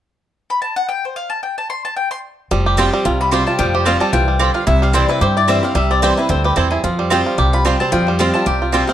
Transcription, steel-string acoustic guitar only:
2.51 2.76 F3 medium
2.77 3.04 F3 medium
2.77 3.04 G3 medium
2.77 3.04 C4 medium
2.77 3.05 G4 loud
3.05 3.57 C3 medium
3.31 3.57 F3 medium
3.31 3.58 G3 medium
3.31 3.58 C4 medium
3.31 3.59 G4 medium
3.59 3.85 F3 medium
3.86 4.12 F3 medium
3.86 4.12 G3 loud
3.86 4.12 C4 medium
3.86 4.13 G4 loud
4.13 4.39 E3 medium
4.39 4.66 D3 medium
4.67 5.19 C3 medium
4.93 5.08 E3 loud
4.93 5.09 G3 medium
4.93 5.09 C4 loud
4.93 5.07 E4 medium
5.09 5.21 C4 medium
5.09 5.21 E4 medium
5.21 5.73 G2 medium
5.48 5.63 E3 medium
5.48 5.63 G3 medium
5.48 5.63 C4 medium
5.48 5.62 E4 medium
5.63 5.76 C4 medium
5.63 5.75 E4 medium
5.75 6.27 C3 medium
6.02 6.17 E3 medium
6.02 6.17 G3 loud
6.02 6.17 C4 medium
6.02 6.16 E4 loud
6.17 6.30 C4 soft
6.17 6.29 E4 medium
6.29 6.55 D3 medium
6.56 6.82 E3 medium
6.84 7.09 F3 medium
7.10 7.37 F3 medium
7.10 7.37 G3 medium
7.10 7.37 C4 medium
7.10 7.37 G4 loud
7.38 7.90 C3 medium
7.65 7.79 F3 medium
7.65 7.80 G3 medium
7.65 7.80 C4 medium
7.65 7.79 G4 medium
7.80 7.93 C4 soft
7.80 7.92 G4 medium
7.92 8.18 F3 medium
8.19 8.45 F3 medium
8.19 8.45 G3 medium
8.19 8.46 C4 medium
8.19 8.46 G4 loud
8.46 8.93 C3 medium
8.72 8.87 F3 medium
8.72 8.88 G3 medium
8.72 8.88 C4 medium
8.72 8.86 G4 medium
8.87 8.93 C4 medium
8.87 8.93 G4 medium

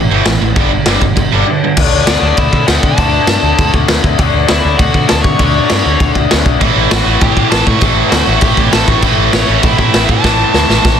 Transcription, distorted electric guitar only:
0.11 0.25 A2 medium
0.11 0.25 E3 medium
0.11 0.25 A3 medium
0.27 0.40 A2 medium
0.27 0.40 E3 medium
0.41 0.54 A2 medium
0.41 0.55 E3 medium
0.55 0.70 G2 loud
0.55 0.70 D3 loud
0.55 0.70 G3 loud
0.71 0.85 G2 medium
0.71 0.85 D3 medium
0.88 1.01 G2 medium
0.88 1.01 D3 medium
0.88 1.02 G3 loud
1.02 1.15 G2 medium
1.02 1.15 D3 medium
1.16 1.30 G2 medium
1.16 1.30 D3 medium
1.32 1.45 G2 medium
1.32 1.46 D3 medium
1.32 1.46 G3 loud
1.47 1.60 G2 medium
1.47 1.61 D3 medium
1.64 1.77 G2 medium
1.64 1.77 D3 medium
6.61 7.06 A2 loud
6.61 7.05 E3 loud
6.61 7.04 A3 loud
7.04 7.51 A2 medium
7.04 7.53 E3 medium
7.04 7.54 A3 medium
7.52 7.81 A2 medium
7.52 7.83 E3 medium
7.52 7.83 A3 medium
7.82 8.30 A2 loud
7.82 8.30 E3 loud
7.82 8.28 A3 loud
8.28 8.73 A2 medium
8.28 8.74 E3 medium
8.28 8.74 A3 loud
8.74 9.03 A2 medium
8.74 9.04 E3 medium
8.74 9.05 A3 medium
9.03 9.49 A2 loud
9.03 9.48 E3 loud
9.03 9.47 A3 loud
9.48 9.94 A2 medium
9.48 9.94 E3 medium
9.48 9.96 A3 medium
9.94 10.22 A2 medium
9.94 10.23 E3 medium
9.94 10.24 A3 medium
10.22 10.68 A2 medium
10.22 10.68 E3 loud
10.22 10.69 A3 loud
10.70 11.00 A2 medium
10.70 11.00 E3 medium
10.70 11.00 A3 loud

